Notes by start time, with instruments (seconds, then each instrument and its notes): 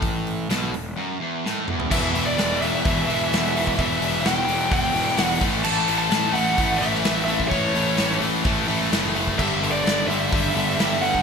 Already playing: picked electric bass A1, overdriven electric guitar A2
0.02 kick, open hi-hat
0.27 open hi-hat
0.49 picked electric bass B1, overdriven electric guitar B2, snare, open hi-hat
0.72 picked electric bass E1, overdriven electric guitar E2, open hi-hat
0.97 overdriven electric guitar F#2
1.20 overdriven electric guitar E2
1.44 overdriven electric guitar A2, snare
1.67 overdriven electric guitar E2, mid tom
1.80 floor tom
1.90 picked electric bass E1, overdriven electric guitar E2 B2 E3, lead electric guitar E5, kick, crash
2.13 picked electric bass E1, overdriven electric guitar E2 B2 E3, open hi-hat
2.26 lead electric guitar D5
2.36 picked electric bass E1, overdriven electric guitar E2 B2 E3, snare, open hi-hat
2.61 picked electric bass E1, overdriven electric guitar E2 B2 E3, lead electric guitar E5, open hi-hat
2.84 picked electric bass E1, overdriven electric guitar E2 B2 E3, kick, open hi-hat
3.08 picked electric bass E1, overdriven electric guitar E2 B2 E3, open hi-hat
3.31 picked electric bass E1, overdriven electric guitar E2 B2 E3, snare, open hi-hat
3.53 overdriven electric guitar E2 B2 E3, open hi-hat
3.67 kick
3.77 picked electric bass E1, overdriven electric guitar E2 B2 E3, lead electric guitar E5, kick, open hi-hat
4.00 picked electric bass E1, overdriven electric guitar E2 B2 E3, open hi-hat
4.24 picked electric bass E1, overdriven electric guitar E2 B2 E3, lead electric guitar G5, snare, open hi-hat
4.47 picked electric bass E1, overdriven electric guitar E2 B2 E3, open hi-hat
4.70 picked electric bass E1, overdriven electric guitar E2 B2 E3, lead electric guitar G5, kick, open hi-hat
4.93 picked electric bass E1, overdriven electric guitar E2 B2 E3, open hi-hat
4.98 distorted electric guitar E2
5.08 snare
5.16 picked electric bass E1, overdriven electric guitar E2 B2 E3, lead electric guitar F#5, snare, open hi-hat
5.40 picked electric bass A1, overdriven electric guitar A2 E3 A3, kick, open hi-hat
5.63 picked electric bass A1, overdriven electric guitar A2 E3 A3, lead electric guitar A5, crash
5.87 picked electric bass A1, overdriven electric guitar A2 E3 A3, open hi-hat
5.98 lead electric guitar A5
6.10 picked electric bass A1, overdriven electric guitar A2 E3 A3, snare, open hi-hat
6.33 picked electric bass A1, overdriven electric guitar A2 E3 A3, lead electric guitar F#5, open hi-hat
6.57 picked electric bass A1, overdriven electric guitar A2 E3 A3, kick, open hi-hat
6.78 picked electric bass A1, overdriven electric guitar A2, lead electric guitar E5, open hi-hat
6.82 overdriven electric guitar E3 A3
6.95 snare
7.03 picked electric bass A1, overdriven electric guitar A2 E3 A3, snare, open hi-hat
7.25 overdriven electric guitar A2 E3 A3, lead electric guitar E5, open hi-hat
7.40 kick
7.48 picked electric bass A1, overdriven electric guitar A2 E3, lead electric guitar C#5, kick, open hi-hat
7.52 overdriven electric guitar A3
7.75 picked electric bass A1, overdriven electric guitar A2 E3 A3, open hi-hat
7.97 picked electric bass A1, overdriven electric guitar A2 E3 A3, snare, open hi-hat
8.20 picked electric bass A1, overdriven electric guitar A2 E3 A3, open hi-hat
8.45 picked electric bass A1, overdriven electric guitar A2 E3 A3, kick, open hi-hat
8.67 picked electric bass A1, overdriven electric guitar A2 E3 A3, open hi-hat
8.82 snare
8.91 picked electric bass F#1, overdriven electric guitar A2 E3 A3, snare, open hi-hat
9.15 overdriven electric guitar A2 E3 A3, open hi-hat
9.28 kick
9.38 picked electric bass G1, overdriven electric guitar G2 D3 G3, lead electric guitar E5, kick, crash
9.61 picked electric bass G1, overdriven electric guitar G2 D3 G3, open hi-hat
9.71 lead electric guitar D5
9.84 picked electric bass G1, overdriven electric guitar G2 D3 G3, snare, open hi-hat
10.07 picked electric bass G1, overdriven electric guitar G2 D3 G3, lead electric guitar E5, open hi-hat
10.31 picked electric bass G1, overdriven electric guitar G2 D3 G3, kick, open hi-hat
10.54 picked electric bass G1, overdriven electric guitar G2 D3 G3, open hi-hat
10.58 distorted electric guitar G2
10.69 snare
10.77 picked electric bass G1, overdriven electric guitar G2 D3 G3, snare, open hi-hat
11.01 overdriven electric guitar G2 D3 G3, lead electric guitar F#5, open hi-hat
11.15 kick